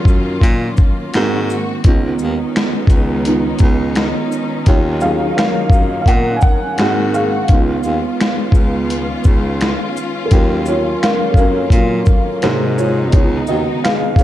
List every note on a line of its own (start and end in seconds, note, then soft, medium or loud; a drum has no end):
0.00 1.11 D#3 medium
0.00 1.11 F#3 medium
0.00 1.15 F#3 soft
0.00 1.81 A#3 medium
0.00 1.11 C#4 medium
0.00 1.15 C#4 soft
0.00 1.11 F4 medium
0.00 1.16 F4 medium
0.05 0.36 F#2 medium
0.05 kick loud
0.05 shaker soft
0.41 0.72 A#2 loud
0.41 kick medium
0.41 closed hi-hat medium
0.77 kick medium
0.77 shaker soft
1.13 1.74 G#2 loud
1.13 10.27 D#3 medium
1.13 1.83 G#3 medium
1.13 1.81 A#3 medium
1.13 1.83 C4 medium
1.13 1.81 C4 medium
1.13 1.83 F#4 medium
1.13 1.82 F#4 medium
1.13 finger snap medium
1.13 snare loud
1.13 closed hi-hat medium
1.50 shaker soft
1.84 2.15 C#2 medium
1.84 4.63 G#3 medium
1.84 4.64 B3 medium
1.84 2.87 B3 medium
1.84 6.74 C#4 medium
1.84 6.74 D#4 medium
1.84 2.87 D#4 soft
1.84 2.87 F4 medium
1.84 kick loud
1.84 closed hi-hat medium
2.19 2.37 D#2 medium
2.19 shaker soft
2.56 finger snap medium
2.56 snare loud
2.56 closed hi-hat medium
2.87 3.49 C#2 medium
2.87 kick medium
2.87 closed hi-hat soft
2.87 shaker soft
3.25 3.58 B3 medium
3.25 3.58 D#4 medium
3.25 3.58 F4 medium
3.25 closed hi-hat medium
3.59 4.08 C#2 medium
3.59 kick medium
3.59 closed hi-hat soft
3.59 shaker soft
3.95 finger snap medium
3.95 snare loud
3.95 closed hi-hat medium
4.32 shaker soft
4.66 5.27 D#2 loud
4.66 6.76 F#3 medium
4.66 6.76 A#3 medium
4.66 5.00 F4 medium
4.66 5.03 C#5 medium
4.66 kick loud
4.66 closed hi-hat medium
5.01 6.04 F#3 medium
5.01 6.04 C#4 soft
5.01 6.04 F4 medium
5.01 5.35 G#4 medium
5.01 5.35 F5 medium
5.01 shaker soft
5.38 5.99 A#4 medium
5.38 5.98 F5 loud
5.38 finger snap medium
5.38 snare loud
5.38 closed hi-hat medium
5.70 6.01 F#2 medium
5.70 kick loud
5.70 shaker soft
6.01 6.07 F5 medium
6.06 6.37 A#2 loud
6.06 6.36 A#4 medium
6.06 6.38 F#5 loud
6.06 kick medium
6.06 closed hi-hat medium
6.36 6.43 G#5 medium
6.41 7.10 A#4 medium
6.41 7.09 F#5 loud
6.41 kick medium
6.41 shaker soft
6.78 7.38 G#2 loud
6.78 10.27 G#3 medium
6.78 7.48 A#3 medium
6.78 7.28 A#3 medium
6.78 7.48 C4 medium
6.78 7.28 C4 soft
6.78 7.48 F#4 medium
6.78 7.28 F#4 medium
6.78 finger snap medium
6.78 snare loud
6.78 closed hi-hat medium
7.14 9.93 G#4 medium
7.14 9.92 F5 medium
7.14 shaker soft
7.48 7.79 C#2 loud
7.48 10.28 B3 medium
7.48 7.98 B3 soft
7.48 12.39 C#4 medium
7.48 7.99 D#4 soft
7.48 12.39 F4 medium
7.48 7.99 F4 medium
7.48 kick loud
7.48 closed hi-hat medium
7.83 8.02 D#2 loud
7.83 shaker soft
8.21 finger snap medium
8.21 snare loud
8.21 closed hi-hat medium
8.52 9.13 C#2 medium
8.52 kick medium
8.52 shaker soft
8.90 closed hi-hat medium
9.24 9.73 C#2 medium
9.24 kick medium
9.24 shaker soft
9.61 finger snap medium
9.61 snare loud
9.61 closed hi-hat medium
9.97 shaker medium
10.25 10.31 A4 medium
10.31 10.92 D#2 loud
10.31 12.41 D#3 medium
10.31 13.11 F#3 medium
10.31 11.33 F#3 medium
10.31 13.11 A#3 medium
10.31 10.65 C#4 medium
10.31 10.68 F4 medium
10.31 10.65 A#4 medium
10.31 kick loud
10.31 closed hi-hat medium
10.66 11.01 F4 medium
10.66 11.00 C#5 medium
10.66 shaker soft
11.03 11.30 A#4 medium
11.03 11.30 F5 loud
11.03 finger snap medium
11.03 snare loud
11.03 closed hi-hat medium
11.31 11.65 F#2 medium
11.31 11.37 A4 medium
11.31 kick medium
11.37 11.72 C#4 medium
11.37 12.39 A#4 loud
11.37 shaker soft
11.70 12.01 A#2 medium
11.70 12.05 F#3 medium
11.70 12.05 C#4 soft
11.70 12.05 F4 medium
11.70 kick medium
11.70 closed hi-hat medium
12.06 kick medium
12.06 shaker soft
12.42 13.15 G#2 loud
12.42 13.13 C3 medium
12.42 13.11 C3 soft
12.42 13.12 G#3 medium
12.42 13.10 A#3 medium
12.42 14.23 D#4 medium
12.42 12.77 D#4 medium
12.42 13.11 F#4 medium
12.42 12.79 C5 medium
12.42 finger snap medium
12.42 snare loud
12.42 closed hi-hat medium
12.78 13.12 F4 medium
12.78 13.11 C#5 medium
12.78 shaker medium
13.12 13.44 C#2 loud
13.12 14.23 C#3 medium
13.12 14.23 D#3 medium
13.12 14.23 G#3 medium
13.12 14.23 B3 medium
13.12 14.23 D#4 soft
13.12 13.23 F4 medium
13.12 13.21 C#5 medium
13.12 kick loud
13.12 closed hi-hat medium
13.47 13.66 D#2 medium
13.47 13.82 F#4 medium
13.47 13.85 D#5 medium
13.47 shaker soft
13.84 14.18 G#4 medium
13.84 14.20 F5 loud
13.84 finger snap medium
13.84 snare loud
13.84 closed hi-hat medium
14.16 14.23 C#2 medium
14.16 14.23 C#5 medium
14.16 kick medium
14.16 closed hi-hat soft
14.16 shaker soft